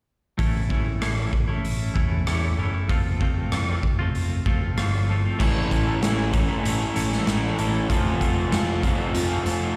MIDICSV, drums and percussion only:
0, 0, Header, 1, 2, 480
1, 0, Start_track
1, 0, Tempo, 625000
1, 300, Time_signature, 4, 2, 24, 8
1, 7499, End_track
2, 0, Start_track
2, 0, Title_t, "Drums"
2, 298, Note_on_c, 9, 46, 43
2, 299, Note_on_c, 9, 36, 90
2, 375, Note_off_c, 9, 46, 0
2, 376, Note_off_c, 9, 36, 0
2, 539, Note_on_c, 9, 36, 70
2, 616, Note_off_c, 9, 36, 0
2, 780, Note_on_c, 9, 46, 41
2, 782, Note_on_c, 9, 37, 95
2, 857, Note_off_c, 9, 46, 0
2, 859, Note_off_c, 9, 37, 0
2, 1021, Note_on_c, 9, 36, 69
2, 1098, Note_off_c, 9, 36, 0
2, 1264, Note_on_c, 9, 46, 49
2, 1341, Note_off_c, 9, 46, 0
2, 1503, Note_on_c, 9, 36, 76
2, 1579, Note_off_c, 9, 36, 0
2, 1742, Note_on_c, 9, 46, 40
2, 1744, Note_on_c, 9, 37, 91
2, 1819, Note_off_c, 9, 46, 0
2, 1821, Note_off_c, 9, 37, 0
2, 2223, Note_on_c, 9, 36, 98
2, 2223, Note_on_c, 9, 46, 39
2, 2300, Note_off_c, 9, 36, 0
2, 2300, Note_off_c, 9, 46, 0
2, 2463, Note_on_c, 9, 36, 74
2, 2540, Note_off_c, 9, 36, 0
2, 2702, Note_on_c, 9, 46, 40
2, 2704, Note_on_c, 9, 37, 97
2, 2779, Note_off_c, 9, 46, 0
2, 2781, Note_off_c, 9, 37, 0
2, 2944, Note_on_c, 9, 36, 71
2, 3020, Note_off_c, 9, 36, 0
2, 3186, Note_on_c, 9, 46, 46
2, 3263, Note_off_c, 9, 46, 0
2, 3425, Note_on_c, 9, 36, 76
2, 3502, Note_off_c, 9, 36, 0
2, 3667, Note_on_c, 9, 46, 36
2, 3669, Note_on_c, 9, 37, 94
2, 3744, Note_off_c, 9, 46, 0
2, 3745, Note_off_c, 9, 37, 0
2, 4147, Note_on_c, 9, 36, 103
2, 4150, Note_on_c, 9, 49, 76
2, 4224, Note_off_c, 9, 36, 0
2, 4227, Note_off_c, 9, 49, 0
2, 4388, Note_on_c, 9, 36, 73
2, 4388, Note_on_c, 9, 42, 59
2, 4464, Note_off_c, 9, 36, 0
2, 4465, Note_off_c, 9, 42, 0
2, 4628, Note_on_c, 9, 42, 83
2, 4629, Note_on_c, 9, 38, 98
2, 4704, Note_off_c, 9, 42, 0
2, 4706, Note_off_c, 9, 38, 0
2, 4864, Note_on_c, 9, 42, 62
2, 4866, Note_on_c, 9, 36, 80
2, 4941, Note_off_c, 9, 42, 0
2, 4943, Note_off_c, 9, 36, 0
2, 5110, Note_on_c, 9, 42, 82
2, 5187, Note_off_c, 9, 42, 0
2, 5345, Note_on_c, 9, 42, 58
2, 5422, Note_off_c, 9, 42, 0
2, 5469, Note_on_c, 9, 38, 26
2, 5545, Note_off_c, 9, 38, 0
2, 5584, Note_on_c, 9, 42, 74
2, 5586, Note_on_c, 9, 38, 88
2, 5661, Note_off_c, 9, 42, 0
2, 5663, Note_off_c, 9, 38, 0
2, 5825, Note_on_c, 9, 42, 57
2, 5902, Note_off_c, 9, 42, 0
2, 6066, Note_on_c, 9, 36, 94
2, 6066, Note_on_c, 9, 42, 73
2, 6143, Note_off_c, 9, 36, 0
2, 6143, Note_off_c, 9, 42, 0
2, 6306, Note_on_c, 9, 36, 81
2, 6308, Note_on_c, 9, 42, 53
2, 6383, Note_off_c, 9, 36, 0
2, 6385, Note_off_c, 9, 42, 0
2, 6545, Note_on_c, 9, 42, 70
2, 6547, Note_on_c, 9, 38, 100
2, 6622, Note_off_c, 9, 42, 0
2, 6624, Note_off_c, 9, 38, 0
2, 6785, Note_on_c, 9, 36, 83
2, 6786, Note_on_c, 9, 42, 53
2, 6861, Note_off_c, 9, 36, 0
2, 6863, Note_off_c, 9, 42, 0
2, 7024, Note_on_c, 9, 42, 80
2, 7100, Note_off_c, 9, 42, 0
2, 7264, Note_on_c, 9, 42, 55
2, 7340, Note_off_c, 9, 42, 0
2, 7499, End_track
0, 0, End_of_file